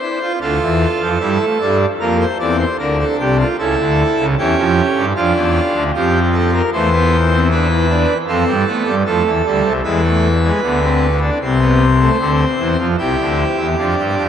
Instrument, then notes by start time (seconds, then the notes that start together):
pipe organ
Already playing: C5
0.02 E4
0.22 F4
0.41 D2 D3 F4 A4
0.61 E2 E3
1.01 F2 F3
1.20 G2 G3 E4
1.41 A3
1.61 G2 G3 D4
2.00 F2 F3 A#3 A#4
2.21 C5
2.40 E2 E3 C4 D5
2.60 C5
2.79 D2 D3 D4 A#4
2.99 A4
3.19 C2 C3 G4
3.40 F4
3.59 C#2 C#3 E4 A4
3.79 D2 D3
4.19 C#2 C#3
4.38 E2 E3 C#4 G4
4.57 F2 F3
4.96 G2 G3
5.16 F2 F3 D4 F4
5.35 E2 E3
5.74 D2 D3
5.94 F2 F3 C4 G4
6.34 A4
6.54 A#4
6.73 E2 E3 A3 C5
6.93 B3
7.32 C4
7.51 D4 B4
7.70 E4
7.90 D4
8.28 F2 F3 C4 A4
8.48 G2 G3
8.67 A3 B3
8.86 G2 G3
9.06 F2 F3 A3 A4
9.25 E2 E3
9.45 D2 D3 G3
9.64 C2 C3
9.84 E2 E3 G#3 B4
10.04 A3
10.44 G#3
10.63 D2 D3 B3
10.83 C4
11.22 D4
11.42 C2 C3 C4 C5
11.61 B3
12.00 A3
12.20 D2 D3 C4
12.59 E2 E3
12.79 F2 F3
12.99 C2 C3 E4 G4
13.20 D2 D3
13.58 E2 E3
13.78 F2 F3 D4
13.98 G2 G3
14.17 F2 F3